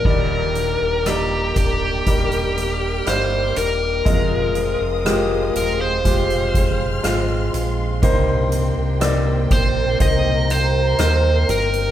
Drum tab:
CC |x---------------|----------------|----------------|
HH |--x-x-x-xxx-x-x-|x-x-x-x-xxx-x-x-|x-x-x-x-x-x-x-xx|
SD |----r-------r---|----r-------r---|----r-------r---|
BD |o-----o-o-------|o-------o-o-----|o-----o-o-------|